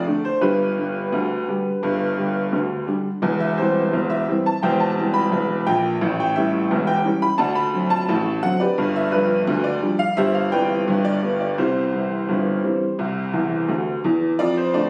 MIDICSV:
0, 0, Header, 1, 2, 480
1, 0, Start_track
1, 0, Key_signature, 0, "major"
1, 0, Tempo, 696056
1, 295, Time_signature, 2, 2, 24, 8
1, 7014, Tempo, 701754
1, 10246, End_track
2, 0, Start_track
2, 0, Title_t, "Upright piano"
2, 0, Program_c, 0, 0
2, 0, Note_on_c, 0, 74, 86
2, 47, Note_on_c, 0, 50, 58
2, 49, Note_on_c, 0, 57, 55
2, 54, Note_on_c, 0, 62, 66
2, 170, Note_on_c, 0, 72, 84
2, 171, Note_off_c, 0, 74, 0
2, 181, Note_off_c, 0, 50, 0
2, 183, Note_off_c, 0, 57, 0
2, 186, Note_off_c, 0, 62, 0
2, 285, Note_on_c, 0, 71, 84
2, 287, Note_on_c, 0, 31, 75
2, 287, Note_on_c, 0, 43, 79
2, 290, Note_on_c, 0, 62, 65
2, 293, Note_off_c, 0, 72, 0
2, 293, Note_on_c, 0, 67, 62
2, 451, Control_c, 0, 64, 127
2, 495, Note_off_c, 0, 31, 0
2, 495, Note_off_c, 0, 43, 0
2, 533, Note_off_c, 0, 62, 0
2, 535, Note_on_c, 0, 50, 50
2, 538, Note_on_c, 0, 55, 45
2, 543, Note_on_c, 0, 62, 46
2, 668, Note_off_c, 0, 50, 0
2, 670, Note_off_c, 0, 55, 0
2, 674, Note_off_c, 0, 62, 0
2, 776, Note_on_c, 0, 38, 71
2, 776, Note_on_c, 0, 50, 71
2, 785, Control_c, 0, 64, 0
2, 982, Note_off_c, 0, 38, 0
2, 982, Note_off_c, 0, 50, 0
2, 1022, Note_on_c, 0, 50, 47
2, 1026, Note_on_c, 0, 55, 53
2, 1028, Note_on_c, 0, 62, 48
2, 1154, Note_off_c, 0, 50, 0
2, 1157, Note_off_c, 0, 55, 0
2, 1158, Note_off_c, 0, 62, 0
2, 1260, Note_on_c, 0, 31, 68
2, 1262, Note_on_c, 0, 43, 83
2, 1410, Control_c, 0, 64, 127
2, 1466, Note_off_c, 0, 31, 0
2, 1467, Note_off_c, 0, 43, 0
2, 1500, Note_on_c, 0, 50, 45
2, 1504, Note_on_c, 0, 55, 45
2, 1506, Note_on_c, 0, 62, 44
2, 1633, Note_off_c, 0, 50, 0
2, 1637, Note_off_c, 0, 55, 0
2, 1638, Note_off_c, 0, 62, 0
2, 1741, Note_on_c, 0, 38, 57
2, 1743, Note_on_c, 0, 50, 62
2, 1752, Control_c, 0, 64, 0
2, 1948, Note_off_c, 0, 38, 0
2, 1949, Note_off_c, 0, 50, 0
2, 1958, Note_off_c, 0, 67, 0
2, 1979, Note_on_c, 0, 50, 43
2, 1979, Note_on_c, 0, 55, 46
2, 1981, Note_off_c, 0, 71, 0
2, 1987, Note_on_c, 0, 62, 55
2, 2114, Note_off_c, 0, 50, 0
2, 2114, Note_off_c, 0, 55, 0
2, 2119, Note_off_c, 0, 62, 0
2, 2221, Note_on_c, 0, 28, 64
2, 2223, Note_on_c, 0, 40, 79
2, 2348, Note_on_c, 0, 76, 74
2, 2381, Control_c, 0, 64, 127
2, 2429, Note_off_c, 0, 28, 0
2, 2430, Note_off_c, 0, 40, 0
2, 2465, Note_on_c, 0, 72, 78
2, 2468, Note_off_c, 0, 76, 0
2, 2469, Note_on_c, 0, 52, 50
2, 2472, Note_on_c, 0, 55, 44
2, 2474, Note_on_c, 0, 60, 43
2, 2601, Note_off_c, 0, 52, 0
2, 2603, Note_off_c, 0, 55, 0
2, 2604, Note_off_c, 0, 60, 0
2, 2710, Note_on_c, 0, 40, 67
2, 2712, Note_on_c, 0, 28, 66
2, 2718, Control_c, 0, 64, 0
2, 2826, Note_on_c, 0, 76, 81
2, 2827, Note_off_c, 0, 72, 0
2, 2913, Note_off_c, 0, 40, 0
2, 2914, Note_off_c, 0, 28, 0
2, 2952, Note_on_c, 0, 52, 53
2, 2953, Note_on_c, 0, 55, 48
2, 2958, Note_on_c, 0, 60, 63
2, 3067, Note_off_c, 0, 76, 0
2, 3077, Note_on_c, 0, 81, 74
2, 3083, Note_off_c, 0, 52, 0
2, 3083, Note_off_c, 0, 55, 0
2, 3087, Note_off_c, 0, 60, 0
2, 3190, Note_on_c, 0, 79, 80
2, 3192, Note_off_c, 0, 81, 0
2, 3195, Note_on_c, 0, 28, 78
2, 3195, Note_on_c, 0, 40, 78
2, 3196, Note_on_c, 0, 72, 64
2, 3200, Note_on_c, 0, 76, 58
2, 3304, Note_off_c, 0, 72, 0
2, 3306, Note_off_c, 0, 76, 0
2, 3309, Note_off_c, 0, 79, 0
2, 3310, Note_on_c, 0, 81, 72
2, 3321, Control_c, 0, 64, 127
2, 3395, Note_off_c, 0, 28, 0
2, 3395, Note_off_c, 0, 40, 0
2, 3430, Note_on_c, 0, 52, 44
2, 3432, Note_on_c, 0, 55, 44
2, 3435, Note_on_c, 0, 60, 45
2, 3542, Note_on_c, 0, 83, 90
2, 3548, Note_off_c, 0, 81, 0
2, 3561, Note_off_c, 0, 52, 0
2, 3562, Note_off_c, 0, 55, 0
2, 3565, Note_off_c, 0, 60, 0
2, 3666, Note_on_c, 0, 28, 69
2, 3669, Note_on_c, 0, 40, 70
2, 3676, Control_c, 0, 64, 0
2, 3870, Note_off_c, 0, 28, 0
2, 3871, Note_off_c, 0, 40, 0
2, 3904, Note_off_c, 0, 83, 0
2, 3907, Note_on_c, 0, 79, 94
2, 3909, Note_on_c, 0, 34, 77
2, 3911, Note_on_c, 0, 46, 81
2, 4099, Note_off_c, 0, 34, 0
2, 4101, Note_off_c, 0, 46, 0
2, 4146, Note_off_c, 0, 79, 0
2, 4147, Note_on_c, 0, 33, 77
2, 4150, Note_on_c, 0, 45, 81
2, 4275, Note_on_c, 0, 79, 83
2, 4286, Control_c, 0, 64, 127
2, 4350, Note_off_c, 0, 33, 0
2, 4351, Note_off_c, 0, 45, 0
2, 4384, Note_on_c, 0, 76, 79
2, 4389, Note_on_c, 0, 52, 43
2, 4390, Note_off_c, 0, 79, 0
2, 4392, Note_on_c, 0, 55, 53
2, 4394, Note_on_c, 0, 61, 54
2, 4519, Note_off_c, 0, 52, 0
2, 4521, Note_off_c, 0, 55, 0
2, 4523, Note_off_c, 0, 61, 0
2, 4627, Note_on_c, 0, 28, 76
2, 4629, Note_on_c, 0, 40, 74
2, 4630, Control_c, 0, 64, 0
2, 4739, Note_on_c, 0, 79, 89
2, 4743, Note_off_c, 0, 76, 0
2, 4829, Note_off_c, 0, 28, 0
2, 4830, Note_off_c, 0, 40, 0
2, 4859, Note_on_c, 0, 52, 54
2, 4864, Note_on_c, 0, 61, 59
2, 4866, Note_on_c, 0, 55, 60
2, 4980, Note_off_c, 0, 79, 0
2, 4980, Note_on_c, 0, 83, 88
2, 4991, Note_off_c, 0, 52, 0
2, 4995, Note_off_c, 0, 61, 0
2, 4996, Note_off_c, 0, 55, 0
2, 5089, Note_on_c, 0, 81, 91
2, 5094, Note_on_c, 0, 50, 76
2, 5098, Note_on_c, 0, 38, 88
2, 5100, Note_off_c, 0, 83, 0
2, 5102, Note_on_c, 0, 74, 70
2, 5102, Note_on_c, 0, 78, 68
2, 5208, Note_on_c, 0, 83, 89
2, 5212, Note_off_c, 0, 74, 0
2, 5212, Note_off_c, 0, 78, 0
2, 5214, Note_off_c, 0, 81, 0
2, 5237, Control_c, 0, 64, 127
2, 5300, Note_off_c, 0, 50, 0
2, 5302, Note_off_c, 0, 38, 0
2, 5334, Note_on_c, 0, 50, 49
2, 5336, Note_on_c, 0, 54, 52
2, 5340, Note_on_c, 0, 60, 53
2, 5449, Note_on_c, 0, 81, 103
2, 5453, Note_off_c, 0, 83, 0
2, 5467, Note_off_c, 0, 50, 0
2, 5469, Note_off_c, 0, 54, 0
2, 5472, Note_off_c, 0, 60, 0
2, 5577, Note_on_c, 0, 33, 81
2, 5577, Note_on_c, 0, 45, 80
2, 5589, Control_c, 0, 64, 0
2, 5781, Note_off_c, 0, 33, 0
2, 5782, Note_off_c, 0, 45, 0
2, 5812, Note_on_c, 0, 78, 112
2, 5813, Note_on_c, 0, 50, 60
2, 5814, Note_off_c, 0, 81, 0
2, 5815, Note_on_c, 0, 54, 57
2, 5820, Note_on_c, 0, 60, 61
2, 5929, Note_on_c, 0, 74, 87
2, 5935, Note_off_c, 0, 78, 0
2, 5937, Note_on_c, 0, 67, 65
2, 5937, Note_on_c, 0, 71, 68
2, 5947, Note_off_c, 0, 50, 0
2, 5948, Note_off_c, 0, 54, 0
2, 5952, Note_off_c, 0, 60, 0
2, 6053, Note_on_c, 0, 43, 96
2, 6055, Note_on_c, 0, 31, 88
2, 6160, Note_off_c, 0, 67, 0
2, 6160, Note_off_c, 0, 71, 0
2, 6173, Note_off_c, 0, 74, 0
2, 6178, Note_on_c, 0, 76, 86
2, 6183, Control_c, 0, 64, 127
2, 6259, Note_off_c, 0, 43, 0
2, 6260, Note_off_c, 0, 31, 0
2, 6289, Note_on_c, 0, 71, 86
2, 6292, Note_on_c, 0, 53, 53
2, 6298, Note_off_c, 0, 76, 0
2, 6298, Note_on_c, 0, 55, 58
2, 6298, Note_on_c, 0, 62, 51
2, 6425, Note_off_c, 0, 53, 0
2, 6429, Note_off_c, 0, 62, 0
2, 6430, Note_off_c, 0, 55, 0
2, 6530, Note_on_c, 0, 50, 74
2, 6533, Note_on_c, 0, 38, 86
2, 6546, Control_c, 0, 64, 0
2, 6647, Note_on_c, 0, 74, 94
2, 6652, Note_off_c, 0, 71, 0
2, 6737, Note_off_c, 0, 50, 0
2, 6738, Note_off_c, 0, 38, 0
2, 6768, Note_on_c, 0, 53, 58
2, 6773, Note_on_c, 0, 55, 64
2, 6776, Note_on_c, 0, 62, 69
2, 6889, Note_on_c, 0, 77, 96
2, 6891, Note_off_c, 0, 74, 0
2, 6902, Note_off_c, 0, 53, 0
2, 6906, Note_off_c, 0, 55, 0
2, 6908, Note_off_c, 0, 62, 0
2, 7012, Note_on_c, 0, 76, 102
2, 7013, Note_off_c, 0, 77, 0
2, 7014, Note_on_c, 0, 31, 82
2, 7017, Note_on_c, 0, 43, 86
2, 7020, Note_on_c, 0, 67, 82
2, 7022, Note_on_c, 0, 72, 73
2, 7129, Note_off_c, 0, 67, 0
2, 7130, Note_off_c, 0, 72, 0
2, 7133, Note_on_c, 0, 77, 83
2, 7134, Note_off_c, 0, 76, 0
2, 7156, Control_c, 0, 64, 127
2, 7219, Note_off_c, 0, 31, 0
2, 7220, Note_off_c, 0, 43, 0
2, 7252, Note_on_c, 0, 79, 92
2, 7254, Note_off_c, 0, 77, 0
2, 7256, Note_on_c, 0, 52, 49
2, 7257, Note_on_c, 0, 71, 72
2, 7259, Note_on_c, 0, 55, 57
2, 7259, Note_on_c, 0, 74, 73
2, 7262, Note_on_c, 0, 60, 56
2, 7388, Note_off_c, 0, 52, 0
2, 7390, Note_off_c, 0, 55, 0
2, 7392, Note_off_c, 0, 60, 0
2, 7494, Note_on_c, 0, 31, 73
2, 7498, Note_on_c, 0, 43, 84
2, 7505, Control_c, 0, 64, 0
2, 7592, Note_off_c, 0, 71, 0
2, 7592, Note_off_c, 0, 74, 0
2, 7612, Note_on_c, 0, 74, 94
2, 7614, Note_off_c, 0, 79, 0
2, 7649, Control_c, 0, 64, 127
2, 7699, Note_off_c, 0, 31, 0
2, 7701, Note_off_c, 0, 43, 0
2, 7734, Note_on_c, 0, 50, 51
2, 7736, Note_on_c, 0, 55, 45
2, 7739, Note_on_c, 0, 59, 57
2, 7847, Note_off_c, 0, 74, 0
2, 7857, Note_on_c, 0, 74, 72
2, 7867, Note_off_c, 0, 50, 0
2, 7868, Note_off_c, 0, 55, 0
2, 7870, Note_off_c, 0, 59, 0
2, 7977, Note_off_c, 0, 74, 0
2, 7978, Note_on_c, 0, 36, 77
2, 7978, Note_on_c, 0, 72, 76
2, 7980, Note_on_c, 0, 48, 78
2, 7983, Control_c, 0, 64, 0
2, 7984, Note_on_c, 0, 64, 53
2, 7985, Note_on_c, 0, 67, 56
2, 8131, Control_c, 0, 64, 127
2, 8182, Note_off_c, 0, 36, 0
2, 8183, Note_off_c, 0, 48, 0
2, 8218, Note_on_c, 0, 52, 42
2, 8219, Note_on_c, 0, 55, 38
2, 8223, Note_on_c, 0, 60, 45
2, 8350, Note_off_c, 0, 52, 0
2, 8351, Note_off_c, 0, 55, 0
2, 8354, Note_off_c, 0, 60, 0
2, 8459, Note_on_c, 0, 31, 69
2, 8462, Note_on_c, 0, 43, 59
2, 8465, Control_c, 0, 64, 0
2, 8663, Note_off_c, 0, 31, 0
2, 8665, Note_off_c, 0, 43, 0
2, 8700, Note_on_c, 0, 52, 45
2, 8701, Note_on_c, 0, 55, 46
2, 8704, Note_on_c, 0, 60, 52
2, 8832, Note_off_c, 0, 52, 0
2, 8832, Note_off_c, 0, 55, 0
2, 8835, Note_off_c, 0, 60, 0
2, 8940, Note_on_c, 0, 48, 71
2, 8942, Note_on_c, 0, 36, 69
2, 9075, Control_c, 0, 64, 127
2, 9144, Note_off_c, 0, 48, 0
2, 9145, Note_off_c, 0, 36, 0
2, 9178, Note_on_c, 0, 40, 60
2, 9180, Note_on_c, 0, 52, 58
2, 9359, Note_off_c, 0, 40, 0
2, 9360, Note_off_c, 0, 52, 0
2, 9417, Note_on_c, 0, 50, 60
2, 9419, Note_on_c, 0, 38, 61
2, 9425, Control_c, 0, 64, 0
2, 9599, Note_off_c, 0, 38, 0
2, 9599, Note_off_c, 0, 50, 0
2, 9637, Note_off_c, 0, 64, 0
2, 9637, Note_off_c, 0, 67, 0
2, 9661, Note_off_c, 0, 72, 0
2, 9663, Note_on_c, 0, 40, 72
2, 9664, Note_on_c, 0, 52, 73
2, 9842, Note_off_c, 0, 40, 0
2, 9842, Note_off_c, 0, 52, 0
2, 9899, Note_on_c, 0, 74, 105
2, 9904, Note_on_c, 0, 41, 93
2, 10019, Note_off_c, 0, 74, 0
2, 10025, Control_c, 0, 64, 127
2, 10025, Note_on_c, 0, 72, 79
2, 10105, Note_off_c, 0, 41, 0
2, 10139, Note_on_c, 0, 50, 56
2, 10139, Note_on_c, 0, 74, 86
2, 10141, Note_off_c, 0, 72, 0
2, 10142, Note_on_c, 0, 57, 53
2, 10144, Note_on_c, 0, 62, 56
2, 10246, Note_off_c, 0, 50, 0
2, 10246, Note_off_c, 0, 57, 0
2, 10246, Note_off_c, 0, 62, 0
2, 10246, Note_off_c, 0, 74, 0
2, 10246, End_track
0, 0, End_of_file